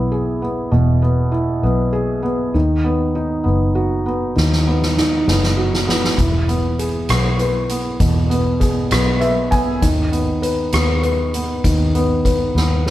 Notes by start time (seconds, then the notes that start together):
Already playing: B1 E3 B3 E4
0.12 G#4
0.42 B3
0.71 E1 B2
1.02 B3
1.32 E4
1.63 B1 B3
1.93 G#4
2.23 B3
2.54 D#2 D#3
2.84 B3
3.15 D#4
3.44 F#1 B3
3.75 F#4
4.06 B3
4.36 D#2 D#3, snare
4.52 snare
4.67 B3
4.82 snare
4.97 D#4, snare
5.27 F#1 B3, snare
5.43 snare
5.57 F#4
5.73 snare
5.87 B3, snare
6.04 snare
6.18 E1 E3, kick, closed hi-hat
6.48 B3, closed hi-hat
6.79 G#4, closed hi-hat
7.09 B1 B3, cross-stick, closed hi-hat
7.39 B4, closed hi-hat
7.69 B3, closed hi-hat
8.00 E2 B2, kick, closed hi-hat
8.30 B3, closed hi-hat
8.60 G#4, kick, closed hi-hat
8.91 B1 B3, cross-stick, closed hi-hat
9.20 B4 E5, closed hi-hat
9.51 B3 G#5, kick, closed hi-hat
9.82 D#2 D#3, kick, closed hi-hat
10.12 B3, closed hi-hat
10.42 B4, closed hi-hat
10.72 D#2 B3, cross-stick, closed hi-hat
11.03 B4, closed hi-hat
11.34 B3, closed hi-hat
11.64 D#2 D#3, kick, closed hi-hat
11.95 B3, closed hi-hat
12.25 B4, kick, closed hi-hat
12.55 D#2 B3, snare
12.86 B4, snare